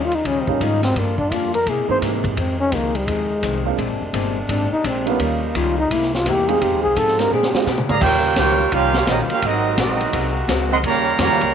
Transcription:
Already playing: D#2 C#3 D#3 F3 G3 C#4 D#4 F4
0.05 F4
0.12 D#4, ride
0.25 C#2 D#3 G3 C#4 F4, kick, ride
0.41 C4
0.47 G3 A#3 C#4 D#4 F4, muted upright bass stroke, kick
0.60 G#2 D#3 G3 C#4 D#4 F4, kick, hi-hat pedal, ride
0.83 C4, snare, ride
0.96 G2 D3 F3 A#3 D4 F4, kick, ride
1.18 D4, kick
1.31 F2 G2 F3 A#3 D4 F4, kick, hi-hat pedal, ride
1.54 A#4, ride
1.66 C3 G#3 A#3 E4 G#4, kick, ride
1.77 A#2
1.87 G#2 E3 A#3 C4 D#4 G#4 C5
2.02 G#2 C3 A#3 E4 G#4, kick, snare, hi-hat pedal, ride
2.24 kick, ride
2.36 F2 D#3 F3 G#3 C4 D#4, kick, ride
2.60 C#4
2.72 C#2 F2 D#3 G#3 A#3 C4, kick, hi-hat pedal, ride
2.95 G3, ride
3.07 D#2 F2 D#3 G#3 C4, kick, ride
3.42 C2 F2 D#3 G#3 C4, kick, hi-hat pedal, ride
3.65 G#3 A#3 C4 D4 F4
3.77 A#1 A#2 G#3 A#3 C4 D4, kick, ride
3.89 G#1
4.01 F1
4.13 G1 A#2 G#3 C4 D4, kick, hi-hat pedal, ride
4.47 G#1 A#2 G#3 C4 D4, kick, ride
4.71 D#4, muted upright bass stroke
4.84 A#1 A#2 G#3 C4 D4, kick, hi-hat pedal, ride
5.05 G3 A#3 B3 C#4 D#4 F4, ride
5.19 D#2 C#3 D#3 F3 G3 A#3 C#4 D#4 F4, kick, ride
5.55 C#2 D#3 G3 C#4 F4, kick, hi-hat pedal, ride
5.79 D#4
5.90 C2 C3 G#3 A#3 E4, kick, ride
6.02 snare
6.14 F4, snare
6.26 E2 C3 G#3 A#3 E4 G4, kick, hi-hat pedal, ride
6.48 G#3 C4 D#4 F4 G4 G#4, ride
6.61 F2 D#3 F3 C4 D#4 F4 G4 G#4, kick, ride
6.73 D#2
6.83 C2 G#4
6.96 G#2 F3 C4 D#4 G#4 A4, kick, hi-hat pedal, ride
7.08 snare
7.18 G#3 C4 D4 F4 G4 A#4, snare, ride
7.31 A#2 D3 G#3 C4 D4 G4 G#4
7.43 snare
7.53 G#3 C4 D4 F4 G4, muted upright bass stroke, snare
7.66 A#2 C3 G#3 D4 G4, snare, hi-hat pedal
7.78 A#2, mid tom
7.88 G#2 D3 F3 A#3 G#4 D5 F5 A#5, mid tom
8.00 D#2 D#3 G3 A#3 C#4 F4 G4 A#4 C#5 G5, kick, crash
8.04 G3
8.35 C#2 D#3 G3 A#3 C#4 F4 G4 A#4 C#5 G5, kick, snare, hi-hat pedal, ride
8.39 F4
8.71 C2 D#3 G3 A#3 C#4 F4 G4 A#4 F5, kick, ride
8.75 F4
8.94 snare
9.07 A#1 D#3 G3 A#3 C#4 D#4 F4 G4 A#4 D#5, kick, snare, hi-hat pedal, ride
9.29 A#3 C#4 F4 G4 A#4 F5, muted upright bass stroke, ride
9.42 G#1 C3 F#3 G#3 A#3 C4 D#4 F#4 A#4 D#5, kick, ride
9.77 A#1 F#3 G#3 C4 D#4 F#4 A#4, kick, snare, hi-hat pedal, ride
9.81 D#5
10.00 ride
10.12 C2 G#3 C4 F#4 A#4, kick, ride
10.48 C#2 G#3 C4 F#4 A#4, kick, snare, hi-hat pedal, ride
10.71 D#3 F#3 C4 A#4 D#5 F#5 C6
10.83 D#2 C#3 D#3 G3 A#3 C#4 F4 G4 C#5 F5 A#5, kick, ride
11.19 F2 C#3 D#3 G3 A#3 C#4 F4 G4 C#5 F5 A#5, kick, snare, hi-hat pedal, ride
11.29 D#2
11.41 C#2, ride

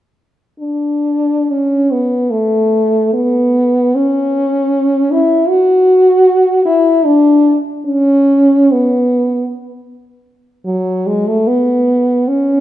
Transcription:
0.60 D4
1.50 C#4
1.91 B3
2.31 A3
3.13 B3
3.95 C#4
5.11 E4
5.49 F#4
6.65 E4
7.05 D4
7.86 C#4
8.72 B3
10.65 F#3
11.07 G#3
11.28 A3
11.47 B3
12.28 C#4

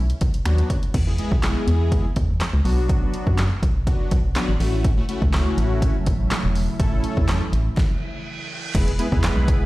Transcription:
Already playing: B1
0.10 closed hi-hat
0.21 B1, kick, closed hi-hat
0.34 closed hi-hat
0.45 D#2 F#3 B3 D4 F#4, finger snap, closed hi-hat
0.58 closed hi-hat
0.70 kick, closed hi-hat
0.83 closed hi-hat
0.94 E2, kick, closed hi-hat, crash
1.07 G#3 B3 E4 G#4
1.18 G#3 B3 E4 G#4, closed hi-hat
1.32 B1, kick
1.43 G#3 B3 E4 G#4, snare, clap, closed hi-hat
1.67 E2, closed hi-hat
1.92 kick, closed hi-hat
2.16 E2, kick, closed hi-hat
2.41 snare, clap, closed hi-hat
2.54 C#2
2.65 B1 F#3 B3 D4 F#4, open hi-hat
2.89 kick, closed hi-hat
3.14 closed hi-hat
3.27 F#2, kick
3.38 snare, clap, closed hi-hat
3.63 B1, kick, closed hi-hat
3.87 F#3 B3 D4 F#4, kick, closed hi-hat
4.11 B1, kick, closed hi-hat
4.35 F#3 B3 D4 F#4, snare, clap, closed hi-hat
4.49 G#1
4.60 A1 A3 C#4 E4 F#4, open hi-hat
4.85 C#3 F#3 A3 E4, kick, closed hi-hat
4.97 A3 C#4 E4 F#4
5.09 A3 C#4 E4 F#4, closed hi-hat
5.22 C#2, kick
5.33 A3 C#4 E4 F#4, snare, clap, closed hi-hat
5.58 A1, closed hi-hat
5.82 kick, closed hi-hat
6.06 A1, kick, closed hi-hat
6.31 snare, clap, closed hi-hat
6.44 E1
6.55 open hi-hat
6.79 A1 E3 A3 C#4 E4 A4, kick, closed hi-hat
7.04 closed hi-hat
7.17 E2, kick
7.28 snare, clap, closed hi-hat
7.53 A1, closed hi-hat
7.77 kick, snare, reverse cymbal
8.75 E1 G#3 B3 E4 G#4 B4, kick, closed hi-hat, crash
8.88 closed hi-hat
8.99 G#3 B3 E4 G#4 B4, closed hi-hat
9.12 E2 G#3 B3 E4 G#4 B4, kick
9.24 snare, clap, closed hi-hat
9.37 B1
9.48 kick, closed hi-hat

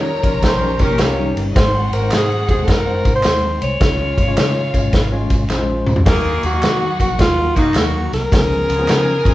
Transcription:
Already playing: A#2 D#3 G3 D#4 A#4 C#5 A#5
0.22 A#1 F3 G3 C#4 D#4 F4 A#4, kick, ride, tambourine
0.42 A#1 D#3 C#4 G4 C5, kick, snare, ride, tambourine
0.60 G3 C#4 D#4 A#4
0.79 A#1 D#3 C#4 G4 A#4, kick, ride, tambourine
0.90 A#3 G4
0.98 C2 G3 C#4 D#4 F4 A4, snare, clap, ride, tambourine
1.02 A#4 C#5
1.18 G3 D#4
1.36 G1 A#3 A#4, ride
1.41 C4 C5
1.46 C#4 C#5
1.50 D#4 D#5
1.55 G#1 G#3 C4 D#4 F#4 C5 F#5, kick, snare, ride
1.92 G#1 A#4, ride, tambourine
2.02 G#3 C4 D#4 C5
2.11 G#2 G#4, snare, clap, ride, tambourine
2.48 D#2 G#3 C4 D#4 G#4 C5, kick, ride, tambourine
2.64 F#2 A4, kick, ride, tambourine
2.69 A#4, snare
2.86 G#3 C4 D#4 C5
3.05 G#2, kick, ride, tambourine
3.15 C5
3.23 D#2 G#3 C4 D#4 A#4, snare, clap, ride, tambourine
3.31 C5
3.62 C2 C#5, ride, tambourine
3.80 C#2 G#3 C#4 F4 C#5 F5, kick, snare, ride, tambourine
4.18 G#1, kick, ride, tambourine
4.28 G#3 C#4 F4 C#5
4.37 C#3, snare, clap, ride, tambourine
4.74 G#1 G#3 C#4 F4 C#5, kick, ride, tambourine
4.93 G#1, kick, snare, ride, tambourine
5.12 G#3 C#4 F4 C#5
5.30 G#1, kick, ride, tambourine
5.50 A#1 G#3 C#4 E4 C5, snare, clap, tambourine
5.57 F4
5.87 D2, mid tom, tambourine
5.96 floor tom
6.05 D#2 D#3 F#3 A#3 D#4 F#4 G#4 A#4 F#5, kick, snare, ride
6.43 D#2 F#4, ride, tambourine
6.53 F#3 A#3 D#4 F#4
6.63 D#3, snare, clap, ride, tambourine
7.00 A#1 F#3 A#3 D#4 A#4, kick, ride, tambourine
7.18 D#2 F4, kick, snare, ride, tambourine
7.38 F#3 A#3 D#4 A#4
7.55 F#2 D#3 A#3 D#4 F#4, kick, ride, tambourine
7.74 D#2 F#3 A#3 D#4 F#4 A#4, snare, clap, ride, tambourine
8.12 C2 A#4, snare, ride, tambourine
8.31 C#2 F3 B3 C#4 G#4 G#5, kick, snare, ride, tambourine
8.69 C#2 C#3 B3 F4, ride, tambourine
8.79 F3 B3 C#4 G#4
8.88 C#3, snare, clap, ride, tambourine
9.25 G#1 C#3 F3 B3 C#4 F4 G#4, kick, ride, tambourine

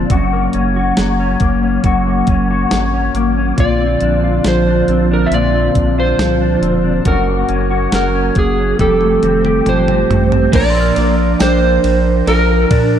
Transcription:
Already playing: A#2 F3 C4 D4 F4
0.09 F#1 F#2 F#3 A#3 C#4 F#4, kick, closed hi-hat
0.33 A#3
0.53 F#1 C#4, closed hi-hat
0.76 F#4
0.97 F#1 F#3, snare, closed hi-hat
1.20 C#4
1.40 F#1 A#3, kick, closed hi-hat
1.63 C#4
1.84 F#1 F#2 F#4, kick, closed hi-hat
2.07 A#3
2.27 F#1 C#4, kick, closed hi-hat
2.51 F#4
2.71 G#1 F#3, snare, closed hi-hat
2.93 C#4
3.15 G#1 A#3, closed hi-hat
3.37 C#4
3.56 A#1 A#2 D3 F3 C4 F4 D5, kick, closed hi-hat
3.80 C4
4.00 A#1 D4, closed hi-hat
4.24 F4
4.44 A#1 F3 C5, snare, closed hi-hat
4.67 D4
4.88 A#1 C4, closed hi-hat
5.11 D4 A#4
5.26 E5
5.31 A#1 A#2 F4 D5, closed hi-hat
5.54 C4
5.75 A#1 D4, kick, closed hi-hat
5.98 F4 C5
6.18 C2 F3, snare, closed hi-hat
6.41 D4
6.62 E1 C4, closed hi-hat
6.84 D4
7.05 F#1 F#2 C#4 F#4 A#4, kick, closed hi-hat
7.28 A#3
7.49 F#1 C#4, closed hi-hat
7.70 F#4
7.92 F#1 F#3 A#4, snare, closed hi-hat
8.15 C#4
8.35 F#1 A#3 G#4, kick, closed hi-hat
8.58 C#4
8.79 F1 F2 F3 G3 A3 C4 G4 A4, kick, closed hi-hat, high tom
9.01 A3, high tom
9.23 F1 C4, closed hi-hat, mid tom
9.45 G4, mid tom
9.66 G1 F3 C5, closed hi-hat, mid tom
9.88 C4, mid tom
10.10 A1 A3, closed hi-hat, floor tom
10.32 C4, floor tom
10.52 A#1 A#2 F3 A#3 D4 F4 A#4 D5, kick, crash, ride
10.70 C6
10.75 E6
10.80 F6
10.95 A#1 A#3 D4 F4 A#4, ride
11.40 A#1 D4 C5 G5, snare, ride, tambourine
11.84 A#1, ride
12.27 A#1 D4 F4 A#4, ride
12.31 A#4
12.71 A#2 D4, kick, ride

